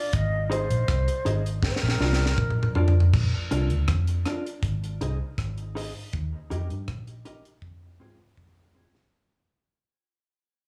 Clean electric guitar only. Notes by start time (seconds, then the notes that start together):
0.50 D#4 G#4 C5 D#5
1.25 D#4 G#4 C5 D#5
2.00 D4 F4 A#4 D5
2.75 D4 F4 A#4 D5
3.51 D4 F4 A#4 D5
4.26 D4 F4 A#4 D5
5.01 D#4 G#4 C5 D#5
5.75 D#4 G#4 C5 D#5
6.50 D#4 G4 A#4 D#5
7.25 D#4 G4 A#4 D#5
8.00 C4 F4 G#4 C5
8.75 C4 F4 G#4 C5